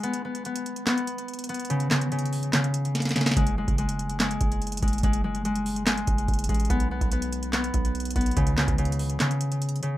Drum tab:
HH |x-----x-----------x-----x-----x-----x-----x-----x-----x-----x-----x-----x--x--x--x--x--x--x--x--|x-----x-----------x-----x---x---x---o-----x-----x-----x-----x-----x-----x---x---x---x-----------|x-----x-----------x-----x-----x-----x-----x-----x-----x-----x-----x-----x--x--x--x--x--x--x--x--|x-----x-----------x-----x-----x-----o-----x-----x-----x-----x-----x-----x--x--x--x--x--x--x--x--|
CP |------------------------------------------------x-----------------------------------------------|------------x-----------------------------------x-----------------------------------------------|------------------------------------------------x-----------------------------------------------|------------------------------------------------x-----------------------------------------------|
SD |------------------------------------------------o-----------------------------------------------|------------o-----------------------------------o-----------------------o--o--o--o--o--o--o--o--|------------------------------------------------o-----------------------------------------------|------------------------------------------------o-----------------------------------------------|
BD |------------------------------------------------------------------------------------------------|------------------------------------------------------------------------------------------------|o-----------------o-----------------------------------------o-----------------------o-----------|o-----------------------------------------------------------o-----------o-----------o-----------|

HH |x-----x-----------x-----x-----x-----x-----x-----x-----x-----x-----x-----x--x--x--x--x--x--x--x--|x-----x-----------x-----x---x---x---o-----x-----x-----x-----x-----x-----x---x---x---x-----------|
CP |------------------------------------------------x-----------------------------------------------|------------x-----------------------------------x-----------------------------------------------|
SD |------------------------------------------------o-----------------------------------------------|------------o-----------------------------------o-----------------------------------------------|
BD |o-----------------o-----------------------------------------o-----------------------o-----------|o-----------------o-----------------------------------------------------------------------------|